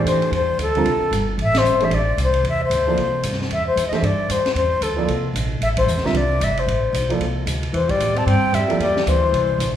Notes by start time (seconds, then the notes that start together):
Already playing: E3 A3 D4 G4 C5
0.04 F2 C5, hi-hat pedal, ride
0.22 ride
0.31 E2 C5, ride
0.58 D2 A4, hi-hat pedal, ride
0.75 D3 G3 C4 F4 A#4, ride
0.85 C2, ride
1.00 muted upright bass stroke
1.11 G1, hi-hat pedal, ride
1.38 A1, ride
1.42 E5
1.54 C5, snare, ride
1.64 G1, hi-hat pedal
1.80 E3 A3 D4 G4 C5 E5, ride
1.91 A1 D5, ride
2.17 C2, hi-hat pedal, ride
2.23 C5
2.34 ride
2.43 E2, ride
2.49 E5
2.64 C5
2.70 D2, hi-hat pedal, ride
2.87 F3 A#3 E4 A4 D5
2.97 C2, ride
3.23 G2, hi-hat pedal, ride
3.32 snare
3.42 snare
3.49 E2 E5, ride
3.67 C5
3.76 F2, hi-hat pedal, ride
3.88 E3 D#5, muted upright bass stroke
3.92 A3 D4 G4 C5 E5, snare, ride
4.02 G2 D5, ride
4.29 F2 C5, hi-hat pedal, ride
4.46 snare, ride
4.54 E2 C5, ride
4.81 D2 A4, hi-hat pedal, ride
4.96 F3 A#3 E4 A4 D5
5.07 C2, ride
5.33 A#1, hi-hat pedal, ride
5.61 A1 E5, ride
5.77 C5, kick, ride
5.87 E2, hi-hat pedal
5.95 C2, snare
6.04 A1 D3 G3 C4 F4 A#4 E5, snare
6.13 C2 D5, ride
6.40 G1 E5, hi-hat pedal, ride
6.57 C5, ride
6.66 A1, ride
6.93 B1, hi-hat pedal, ride
7.09 F3 A#3 E4 A4 D5, ride
7.19 C2, ride
7.46 D2, hi-hat pedal, ride
7.63 ride
7.73 E2 E3 C5, ride
7.89 G3 D5, kick, ride
8.00 A2, hi-hat pedal, ride
8.15 C4 A5, ride
8.26 G2 C4 G5, ride
8.53 F2 G3 E5, hi-hat pedal, ride
8.68 F3 A#3 E4 A4 D5, ride
8.79 E2 G3 D5, ride
8.96 snare
9.06 D2 E3 C5, hi-hat pedal, ride
9.32 C2, ride
9.58 A#1, hi-hat pedal, ride